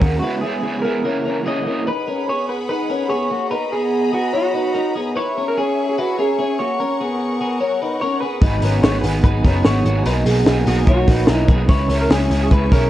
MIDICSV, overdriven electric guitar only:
0, 0, Header, 1, 2, 480
1, 0, Start_track
1, 0, Key_signature, 5, "minor"
1, 0, Tempo, 409836
1, 258, Time_signature, 4, 2, 24, 8
1, 15107, End_track
2, 0, Start_track
2, 0, Title_t, "Overdriven electric guitar"
2, 0, Program_c, 0, 29
2, 3, Note_on_c, 0, 66, 61
2, 25, Note_on_c, 0, 61, 55
2, 38, Note_on_c, 0, 58, 46
2, 245, Note_on_c, 0, 49, 70
2, 251, Note_off_c, 0, 66, 0
2, 253, Note_off_c, 0, 58, 0
2, 258, Note_on_c, 0, 56, 67
2, 260, Note_off_c, 0, 61, 0
2, 265, Note_on_c, 0, 59, 71
2, 276, Note_on_c, 0, 64, 75
2, 480, Note_off_c, 0, 64, 0
2, 493, Note_off_c, 0, 49, 0
2, 494, Note_on_c, 0, 64, 55
2, 496, Note_off_c, 0, 59, 0
2, 499, Note_off_c, 0, 56, 0
2, 510, Note_on_c, 0, 59, 44
2, 531, Note_on_c, 0, 56, 42
2, 729, Note_off_c, 0, 56, 0
2, 729, Note_on_c, 0, 49, 70
2, 735, Note_off_c, 0, 59, 0
2, 738, Note_off_c, 0, 64, 0
2, 743, Note_on_c, 0, 56, 78
2, 749, Note_on_c, 0, 59, 87
2, 760, Note_on_c, 0, 64, 82
2, 961, Note_off_c, 0, 64, 0
2, 975, Note_on_c, 0, 64, 53
2, 976, Note_off_c, 0, 49, 0
2, 981, Note_off_c, 0, 59, 0
2, 983, Note_off_c, 0, 56, 0
2, 995, Note_on_c, 0, 59, 44
2, 1010, Note_on_c, 0, 56, 46
2, 1211, Note_on_c, 0, 49, 54
2, 1219, Note_off_c, 0, 64, 0
2, 1223, Note_off_c, 0, 56, 0
2, 1228, Note_on_c, 0, 52, 54
2, 1229, Note_off_c, 0, 59, 0
2, 1241, Note_on_c, 0, 58, 59
2, 1252, Note_on_c, 0, 64, 68
2, 1678, Note_off_c, 0, 49, 0
2, 1683, Note_on_c, 0, 42, 69
2, 1685, Note_off_c, 0, 52, 0
2, 1689, Note_off_c, 0, 58, 0
2, 1692, Note_off_c, 0, 64, 0
2, 1693, Note_on_c, 0, 49, 83
2, 1699, Note_on_c, 0, 52, 86
2, 1703, Note_on_c, 0, 58, 86
2, 1706, Note_on_c, 0, 64, 82
2, 1917, Note_off_c, 0, 64, 0
2, 1931, Note_on_c, 0, 64, 64
2, 1934, Note_off_c, 0, 42, 0
2, 1937, Note_off_c, 0, 58, 0
2, 1939, Note_off_c, 0, 49, 0
2, 1943, Note_off_c, 0, 52, 0
2, 1951, Note_on_c, 0, 58, 65
2, 1966, Note_on_c, 0, 52, 51
2, 2179, Note_off_c, 0, 64, 0
2, 2189, Note_off_c, 0, 58, 0
2, 2196, Note_off_c, 0, 52, 0
2, 9852, Note_on_c, 0, 44, 76
2, 9858, Note_on_c, 0, 51, 80
2, 9860, Note_on_c, 0, 54, 83
2, 9869, Note_on_c, 0, 59, 78
2, 9876, Note_on_c, 0, 63, 87
2, 10075, Note_off_c, 0, 63, 0
2, 10089, Note_on_c, 0, 63, 54
2, 10095, Note_off_c, 0, 59, 0
2, 10098, Note_off_c, 0, 44, 0
2, 10101, Note_off_c, 0, 51, 0
2, 10102, Note_off_c, 0, 54, 0
2, 10109, Note_on_c, 0, 59, 45
2, 10128, Note_on_c, 0, 54, 42
2, 10328, Note_off_c, 0, 54, 0
2, 10329, Note_on_c, 0, 51, 67
2, 10336, Note_off_c, 0, 63, 0
2, 10338, Note_off_c, 0, 59, 0
2, 10342, Note_on_c, 0, 54, 65
2, 10352, Note_on_c, 0, 59, 72
2, 10370, Note_on_c, 0, 63, 71
2, 10548, Note_off_c, 0, 63, 0
2, 10562, Note_on_c, 0, 63, 59
2, 10568, Note_off_c, 0, 59, 0
2, 10575, Note_off_c, 0, 51, 0
2, 10582, Note_off_c, 0, 54, 0
2, 10582, Note_on_c, 0, 59, 49
2, 10597, Note_on_c, 0, 54, 46
2, 11034, Note_off_c, 0, 63, 0
2, 11039, Note_on_c, 0, 63, 62
2, 11056, Note_off_c, 0, 59, 0
2, 11061, Note_on_c, 0, 59, 54
2, 11070, Note_off_c, 0, 54, 0
2, 11075, Note_on_c, 0, 54, 47
2, 11278, Note_off_c, 0, 54, 0
2, 11278, Note_on_c, 0, 51, 59
2, 11290, Note_off_c, 0, 63, 0
2, 11292, Note_on_c, 0, 54, 62
2, 11293, Note_off_c, 0, 59, 0
2, 11307, Note_on_c, 0, 59, 68
2, 11315, Note_on_c, 0, 63, 73
2, 11757, Note_off_c, 0, 51, 0
2, 11760, Note_off_c, 0, 54, 0
2, 11761, Note_on_c, 0, 47, 82
2, 11774, Note_on_c, 0, 54, 80
2, 11777, Note_off_c, 0, 59, 0
2, 11781, Note_off_c, 0, 63, 0
2, 11782, Note_on_c, 0, 58, 77
2, 11795, Note_on_c, 0, 63, 86
2, 11997, Note_off_c, 0, 63, 0
2, 12010, Note_off_c, 0, 47, 0
2, 12011, Note_on_c, 0, 63, 56
2, 12016, Note_off_c, 0, 54, 0
2, 12020, Note_off_c, 0, 58, 0
2, 12032, Note_on_c, 0, 58, 48
2, 12047, Note_on_c, 0, 54, 50
2, 12233, Note_on_c, 0, 47, 63
2, 12243, Note_off_c, 0, 54, 0
2, 12249, Note_off_c, 0, 58, 0
2, 12254, Note_off_c, 0, 63, 0
2, 12258, Note_on_c, 0, 54, 67
2, 12263, Note_on_c, 0, 58, 74
2, 12278, Note_on_c, 0, 63, 75
2, 12470, Note_off_c, 0, 63, 0
2, 12485, Note_off_c, 0, 47, 0
2, 12485, Note_on_c, 0, 63, 52
2, 12491, Note_off_c, 0, 58, 0
2, 12498, Note_off_c, 0, 54, 0
2, 12505, Note_on_c, 0, 58, 57
2, 12526, Note_on_c, 0, 54, 48
2, 12953, Note_off_c, 0, 63, 0
2, 12967, Note_on_c, 0, 63, 58
2, 12971, Note_off_c, 0, 58, 0
2, 12985, Note_on_c, 0, 58, 53
2, 12991, Note_off_c, 0, 54, 0
2, 13003, Note_on_c, 0, 54, 47
2, 13192, Note_off_c, 0, 54, 0
2, 13193, Note_on_c, 0, 47, 62
2, 13204, Note_off_c, 0, 58, 0
2, 13206, Note_on_c, 0, 54, 62
2, 13211, Note_off_c, 0, 63, 0
2, 13218, Note_on_c, 0, 58, 73
2, 13232, Note_on_c, 0, 63, 72
2, 13674, Note_off_c, 0, 47, 0
2, 13679, Note_on_c, 0, 49, 78
2, 13686, Note_off_c, 0, 54, 0
2, 13690, Note_on_c, 0, 56, 84
2, 13695, Note_off_c, 0, 58, 0
2, 13699, Note_on_c, 0, 61, 85
2, 13703, Note_off_c, 0, 63, 0
2, 13709, Note_on_c, 0, 64, 90
2, 13902, Note_off_c, 0, 64, 0
2, 13916, Note_on_c, 0, 64, 61
2, 13924, Note_off_c, 0, 61, 0
2, 13926, Note_off_c, 0, 49, 0
2, 13932, Note_off_c, 0, 56, 0
2, 13938, Note_on_c, 0, 61, 50
2, 13954, Note_on_c, 0, 56, 45
2, 14156, Note_off_c, 0, 56, 0
2, 14157, Note_on_c, 0, 49, 68
2, 14165, Note_off_c, 0, 64, 0
2, 14170, Note_on_c, 0, 56, 65
2, 14171, Note_off_c, 0, 61, 0
2, 14185, Note_on_c, 0, 61, 78
2, 14193, Note_on_c, 0, 64, 68
2, 14392, Note_off_c, 0, 64, 0
2, 14405, Note_off_c, 0, 49, 0
2, 14406, Note_on_c, 0, 64, 53
2, 14412, Note_off_c, 0, 56, 0
2, 14413, Note_off_c, 0, 61, 0
2, 14427, Note_on_c, 0, 61, 47
2, 14445, Note_on_c, 0, 56, 47
2, 14878, Note_off_c, 0, 64, 0
2, 14892, Note_on_c, 0, 64, 57
2, 14894, Note_off_c, 0, 61, 0
2, 14908, Note_on_c, 0, 61, 58
2, 14918, Note_off_c, 0, 56, 0
2, 14923, Note_on_c, 0, 56, 47
2, 15107, Note_off_c, 0, 56, 0
2, 15107, Note_off_c, 0, 61, 0
2, 15107, Note_off_c, 0, 64, 0
2, 15107, End_track
0, 0, End_of_file